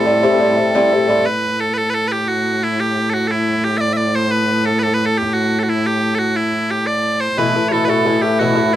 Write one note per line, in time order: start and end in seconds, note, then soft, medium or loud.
0.00 1.24 A2 medium
0.00 1.25 A4 medium
0.05 0.22 A2 medium
0.05 0.22 G3 medium
0.05 0.22 C4 medium
0.05 0.22 E4 medium
0.23 0.38 A2 medium
0.23 0.39 G3 medium
0.23 0.40 C4 medium
0.23 0.40 E4 medium
0.39 0.57 A2 medium
0.39 0.57 G3 medium
0.39 0.56 C4 medium
0.39 0.55 E4 medium
0.56 0.74 G3 soft
0.56 0.74 C4 soft
0.56 0.74 E4 medium
0.74 0.91 A2 medium
0.74 0.92 G3 medium
0.74 0.91 C4 medium
0.74 0.90 E4 medium
0.91 1.07 G3 soft
0.91 1.07 C4 medium
0.91 1.08 E4 soft
1.07 1.25 A2 medium
1.07 1.25 G3 medium
1.07 1.25 C4 medium
1.07 1.26 E4 medium
1.25 7.37 A2 medium
1.25 1.60 B4 medium
1.60 1.74 A4 medium
1.74 1.90 A4 medium
1.74 1.77 B4 medium
1.90 1.94 B4 loud
1.94 2.08 A4 loud
2.08 2.12 B4 medium
2.12 2.28 G4 medium
2.28 2.63 F#4 medium
2.63 2.80 E4 medium
2.80 3.10 G4 loud
3.10 3.28 F#4 medium
3.10 3.14 A4 medium
3.28 3.64 E4 medium
3.28 3.31 A4 medium
3.64 3.78 G4 medium
3.78 3.93 D5 loud
3.78 3.81 E5 loud
3.93 4.15 D5 medium
3.93 3.97 E5 medium
4.15 4.31 C5 medium
4.31 4.65 B4 loud
4.65 4.79 A4 medium
4.79 4.94 A4 medium
4.79 4.83 B4 medium
4.94 5.06 B4 medium
5.06 5.18 A4 loud
5.18 5.34 G4 medium
5.34 5.59 F#4 medium
5.59 5.63 A4 medium
5.63 5.69 F#4 medium
5.69 5.87 E4 medium
5.87 6.15 G4 medium
6.15 6.36 F#4 medium
6.15 6.19 A4 medium
6.36 6.71 E4 medium
6.71 6.87 G4 medium
6.87 7.20 D5 medium
7.20 7.38 C5 medium
7.37 8.76 A2 medium
7.37 7.54 B2 medium
7.37 7.55 E3 medium
7.37 7.54 A3 medium
7.37 7.53 E4 medium
7.37 7.69 B4 medium
7.55 7.71 E3 soft
7.55 7.71 A3 soft
7.55 7.71 E4 soft
7.69 7.88 B2 medium
7.69 7.88 E3 medium
7.69 7.88 A3 medium
7.69 7.85 A4 medium
7.69 7.72 C#5 medium
7.73 7.87 E4 medium
7.85 8.05 E4 medium
7.85 7.89 B4 medium
7.89 8.04 B2 medium
7.89 8.05 E3 medium
7.89 8.05 A3 medium
7.89 8.22 A4 medium
8.05 8.22 B2 medium
8.05 8.23 E3 medium
8.05 8.22 A3 medium
8.05 8.21 E4 medium
8.22 8.39 E3 soft
8.22 8.40 A3 soft
8.22 8.39 E4 soft
8.22 8.39 G4 medium
8.39 8.57 B2 medium
8.39 8.56 E3 medium
8.39 8.56 A3 medium
8.39 8.54 E4 medium
8.39 8.73 F#4 medium
8.55 8.72 E3 soft
8.55 8.73 A3 soft
8.55 8.73 E4 soft